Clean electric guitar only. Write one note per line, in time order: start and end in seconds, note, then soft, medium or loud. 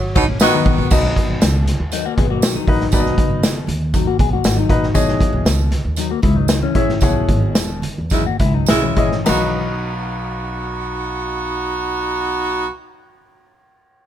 0.29 0.40 C#4 medium
0.41 0.53 F#3 medium
0.41 0.53 D#4 medium
0.54 0.90 D#3 medium
0.54 0.89 B3 medium
1.93 2.05 F#3 medium
1.93 2.04 D#4 medium
2.06 2.17 A#3 medium
2.06 2.17 F#4 medium
2.18 2.30 B3 medium
2.18 2.29 G#4 medium
2.30 2.54 A#3 medium
2.30 2.54 F#4 medium
2.56 3.28 F#3 medium
2.56 3.27 D#4 medium
3.95 4.07 F#3 medium
3.95 4.06 D#4 medium
4.07 4.19 A#3 medium
4.07 4.19 F#4 medium
4.20 4.32 B3 medium
4.20 4.32 G#4 medium
4.33 4.57 A#3 medium
4.33 4.56 F#4 medium
4.58 5.30 F#3 medium
4.58 5.30 D#4 medium
5.98 6.10 F#3 medium
5.98 6.10 D#4 medium
6.11 6.23 A#3 medium
6.11 6.22 F#4 medium
6.23 6.36 G#3 medium
6.23 6.35 E4 medium
6.36 6.61 F#3 medium
6.36 6.61 D#4 medium
6.62 7.38 E3 medium
6.62 7.38 C#4 medium
8.12 8.25 F#3 medium
8.12 8.25 D#4 medium
8.26 8.39 A#3 medium
8.26 8.39 F#4 medium
8.40 8.53 G#3 medium
8.40 8.53 E4 medium
8.54 8.81 F#3 medium
8.54 8.81 D#4 medium
8.82 9.67 E3 medium
8.82 9.67 C#4 medium